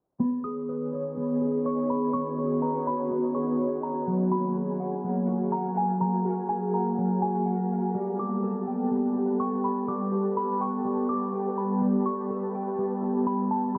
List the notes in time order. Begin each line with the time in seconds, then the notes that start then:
0.20 D#3 B3 C#4 G#4 B4 C#5 D#5 G#5
0.44 G#4 D#6
0.69 B4
0.93 C#5
1.17 B3
1.41 G#4
1.65 C#5 C#6
1.90 B5
2.13 B3 F#4 C#6
2.38 G#4
2.62 B4 A#5
2.87 C#5 B5
3.10 B3
3.35 G#4 C#6
3.59 C#5
3.83 A#5
4.07 F#3 A#3 F#4 G#4 A#4 F5 G#5
4.32 F#4 B5
4.56 G#4
4.80 F#5
5.04 F#3
5.28 F#4
5.52 F#5 A#5
5.77 G#5
6.01 F#3 A#5
6.25 F#4
6.49 G#4 G#5
6.74 F#5 A#5
6.98 F#3
7.22 F#4 G#5
7.46 F#5
7.94 G3 B3 G4 A4 B4 F#5 A5
8.19 G4 D6
8.43 A4
8.67 G5
8.91 G3
9.16 G4
9.40 G5 C#6
9.64 B5
9.88 G3 D6
10.12 G4
10.37 A4 B5
10.60 G5 C#6
10.85 G3
11.09 G4 D6
11.33 G5
11.58 B5
11.81 G3 G4 E5
12.06 G4 C#6
12.30 A4
12.55 G5
12.78 G3
13.02 G4
13.27 G5 B5
13.51 A5
13.75 B5